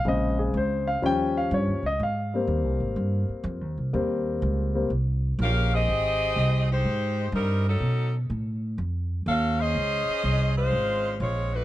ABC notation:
X:1
M:4/4
L:1/8
Q:"Swing" 1/4=124
K:Ab
V:1 name="Saxophone section"
z8 | z8 | z6 [DGBf] [CGAe]- | [CGAe]3 [A,EGc]3 [G,CEB] [_G,DE=A]- |
[_G,DE=A] z4 z [^C^FA=f] [C_A=c^d]- | [^CA=c^d]3 [A,_DFc]3 [A,=CF_d] [=A,=D_G_c] |]
V:2 name="Grand piano"
e A c f g f d e | f6 z2 | z8 | z8 |
z8 | z8 |]
V:3 name="Grand piano"
[D,A,C]4 [F,G,D]3 z | z [G,B,C]6- [G,B,C] | [G,B,C]3 [G,B,C] z4 | z8 |
z8 | z8 |]
V:4 name="Upright bass" clef=bass
B,,,2 D,,2 E,,2 (3G,, E,, D,, | A,,2 (3E,, C,, A,,, G,, z (3F,, E,, C,, | E,,2 D,,2 C,,2 B,,,2 | A,,,2 C,,2 A,,2 G,,2 |
=B,,2 =A,,2 F,,2 ^D,,2 | D,, z C,,2 A,,,2 B,,,2 |]